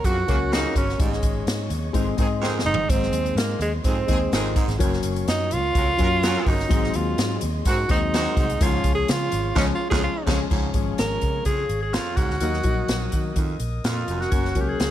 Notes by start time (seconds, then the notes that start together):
Already playing: A#4 C#5 F#5 C#6
0.04 F2 F#2 C#3 A#3 F#4, kick, closed hi-hat
0.27 C#2 C#3 F#3 A#3 C#4 F#4, kick, closed hi-hat
0.51 F2 C#3 A#3 D#4 F#4, snare, closed hi-hat
0.75 G1 F#2 C#4, kick, closed hi-hat
0.89 snare
0.98 G#1 G#2 G#3 C#4 D#4 G#4 D#5, kick, closed hi-hat
1.13 snare
1.23 G#1, kick, closed hi-hat
1.46 G#2, snare, closed hi-hat
1.70 D#2, closed hi-hat
1.93 G#1 F2 D#3 G#3 C4 D#4 G#4 C5 C6, kick, closed hi-hat
2.17 G#2 D#3 G#3 C4 D#4 G#4, kick, closed hi-hat
2.41 F2 D#3 C4 G#4, snare
2.59 snare
2.64 G1 G#2 D#4
2.74 floor tom
2.88 G#1 G#2 G#3 C4 D#4, kick, closed hi-hat
3.03 snare
3.11 D#2, closed hi-hat
3.26 closed hi-hat
3.35 G#2 A#3, snare, closed hi-hat
3.59 D#2 G#3, closed hi-hat
3.84 F2 G#2 D#3 C4 G#4, kick, closed hi-hat
4.07 D#2 D#3 G#3 C4 D#4 G#4, kick, closed hi-hat
4.32 G#1 F2 D#3 C4 G#4, snare, closed hi-hat
4.56 G#2, kick, closed hi-hat
4.68 G#1, snare, closed hi-hat
4.79 F#1 F#2 F#3 A#3 C#4 A#4 C#5 C#6, kick, closed hi-hat
4.93 snare
5.03 F#1, closed hi-hat
5.16 closed hi-hat
5.28 F#2 D#4, snare, closed hi-hat
5.51 C#2 F4, closed hi-hat
5.75 C#2 F2 F#3 C#4 A#4, kick, closed hi-hat
5.97 F#2 F#3 A#3 C#4 A#4, kick, closed hi-hat
6.23 F2 F#3 C#4 A#4, snare, closed hi-hat
6.46 G1 F#2 D#4, kick, open hi-hat
6.60 snare
6.69 G#1 G#2 F#3 G#3 C4 G#4 D#5 C6, kick, closed hi-hat
6.84 snare
6.94 D#2 F4, closed hi-hat
7.18 G#2, snare, closed hi-hat
7.41 D#2, closed hi-hat
7.65 F#2 G#2 D#3 C4 F#4, kick, closed hi-hat
7.88 D#2 D#3 F#3 G#3 C4 D#4 F#4, kick, closed hi-hat
8.13 F#2 D#3 C4 F#4, snare, closed hi-hat
8.37 C2 G#2, kick, closed hi-hat
8.50 closed hi-hat
8.60 C#2 G#2 D#3 G#3 C#4 F4 G#4 C#5 F5 C#6, kick, closed hi-hat
8.66 F3
8.84 C#2, kick, closed hi-hat
8.95 G#4
9.08 C#3 F4, snare, closed hi-hat
9.32 G#1, closed hi-hat
9.55 C#2 F2 C#3 F3 G#3 C#4 F4, kick, snare, crash
9.75 F4
9.90 C#2 F2 C#3 F3 G#3 C#4 F4 G#4, kick, snare
10.04 F4
10.26 C#2 F2 F3 G#3 C#4 G#4, kick, snare, crash
10.50 C#2 G#2 F3 G#3 C#4 G#4 C#5 F5 C#6, kick, crash
10.74 G#1 F3 G#3 C#4, kick, closed hi-hat
10.98 G#1 A#4 A#6, snare, closed hi-hat
11.21 C#3, kick, closed hi-hat
11.45 F2 C#3 G#4 G#6, kick, closed hi-hat
11.69 G#1, closed hi-hat
11.81 G#4 G#6
11.93 F2 F4 F6, snare, closed hi-hat
12.16 C#2 G#2 F#4 F#6, kick, closed hi-hat
12.29 D2, snare
12.40 D#2 F#3 A#3 D#4 A#4 D#5 D#6, closed hi-hat
12.53 snare
12.63 A#1 F#3 A#3 D#4, kick, closed hi-hat
12.88 A#1, snare, closed hi-hat
13.12 D#3, kick, closed hi-hat
13.36 F2 D#3, kick, closed hi-hat
13.60 A#1, closed hi-hat
13.84 F2 A#2 F4 F6, snare, closed hi-hat
14.08 F1 F#2, closed hi-hat
14.20 F#4 F#6, snare
14.31 F#1 F#2 F#3 A#3 C#4 A#4 C#5 C#6, kick, closed hi-hat
14.45 snare
14.55 C#2 F#3 A#3 C#4, kick, closed hi-hat
14.61 G4 G6
14.69 G#4 G#6
14.80 C#2, snare, closed hi-hat